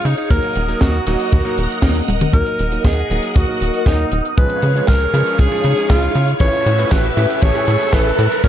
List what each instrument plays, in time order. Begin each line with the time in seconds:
Already playing: string machine G#4 C#5 F5 C#6
0.05 analog synth bass C#3, alto saxophone D#4, closed hi-hat
0.17 alto saxophone D#4, closed hi-hat
0.30 analog synth bass D#2, electric grand piano F#3 A#3 D#4 A#4, string machine A#4 D#5 F#5 D#6, alto saxophone A#4, kick, closed hi-hat
0.43 closed hi-hat
0.55 analog synth bass D#1, closed hi-hat
0.68 electric grand piano F#3 A#3 D#4 A#4, closed hi-hat
0.81 analog synth bass D#2, alto saxophone F#4, kick, snare, closed hi-hat
0.94 closed hi-hat
1.07 analog synth bass D#1, electric grand piano F#3 A#3 D#4 D#5, alto saxophone F#4, closed hi-hat
1.19 closed hi-hat
1.32 analog synth bass D#2, kick, closed hi-hat
1.45 electric grand piano F#3 A#3 D#4 A#4
1.58 analog synth bass D#1, closed hi-hat
1.70 closed hi-hat
1.82 analog synth bass D#2, electric grand piano F#3 A#3 D#4 A#4, kick, snare, closed hi-hat
1.96 closed hi-hat
2.08 analog synth bass D#1, closed hi-hat, high tom
2.21 closed hi-hat, mid tom
2.33 analog synth bass D#2, electric grand piano F#3 A#3 D#4 A#4, alto saxophone A#4, string machine A#4 D#5 F#5 D#6, kick, closed hi-hat, riser
2.47 closed hi-hat
2.59 analog synth bass D#1, closed hi-hat
2.72 electric grand piano F#3 A#3 D#4 A#4, closed hi-hat
2.85 analog synth bass D#2, alto saxophone G#4, kick, snare, closed hi-hat
3.10 analog synth bass D#1, electric grand piano F#3 A#3 D#4 D#5, closed hi-hat
3.23 closed hi-hat
3.36 analog synth bass D#2, alto saxophone F#4, kick, closed hi-hat
3.48 electric grand piano F#3 A#3 D#4 A#4
3.61 analog synth bass D#1, closed hi-hat
3.74 closed hi-hat
3.86 analog synth bass D#2, electric grand piano F#3 A#3 D#4 A#4, alto saxophone D#4, kick, snare, closed hi-hat
4.12 analog synth bass D#1, closed hi-hat
4.25 closed hi-hat
4.37 analog synth bass C#2, electric grand piano F3 G#3 C#4 G#4, string machine G#4 C#5 F5 C#6, alto saxophone B4, kick, closed hi-hat
4.49 closed hi-hat
4.62 analog synth bass C#3, closed hi-hat
4.75 electric grand piano F3 G#3 C#4 G#4, closed hi-hat
4.87 analog synth bass C#2, alto saxophone A#4, kick, snare, closed hi-hat
5.14 analog synth bass C#3, electric grand piano F3 G#3 C#4 B4, closed hi-hat
5.27 closed hi-hat
5.39 analog synth bass C#2, alto saxophone G#4, kick, closed hi-hat
5.52 electric grand piano F3 G#3 C#4 G#4, closed hi-hat
5.64 analog synth bass C#3, closed hi-hat
5.77 closed hi-hat
5.90 analog synth bass C#2, electric grand piano F3 G#3 C#4 G#4, alto saxophone F4, kick, snare, closed hi-hat
6.02 closed hi-hat
6.15 analog synth bass C#3, closed hi-hat
6.28 closed hi-hat
6.40 analog synth bass A1, electric grand piano A2 A3 C#4 E4 B4, string machine B4 E5 A5, alto saxophone C#5, kick, closed hi-hat
6.53 closed hi-hat
6.66 analog synth bass A2, closed hi-hat
6.78 electric grand piano A2 A3 C#4 E4 B4, closed hi-hat
6.91 analog synth bass A1, alto saxophone B4, kick, snare, closed hi-hat
7.17 electric grand piano A2 A3 C#4 E4 E5, analog synth bass A2, closed hi-hat
7.30 closed hi-hat
7.42 analog synth bass A1, alto saxophone C#5, kick, closed hi-hat
7.55 electric grand piano A2 A3 C#4 E4 B4
7.68 analog synth bass A2, closed hi-hat
7.81 closed hi-hat
7.93 analog synth bass A1, electric grand piano A2 A3 C#4 E4 B4, alto saxophone B4, kick, snare, closed hi-hat
8.19 analog synth bass A2, closed hi-hat
8.32 closed hi-hat
8.44 analog synth bass B1, electric grand piano B2 B3 D#4 F#4 C#5, string machine B3 D#5 F#5 C#6, alto saxophone A#4, kick, closed hi-hat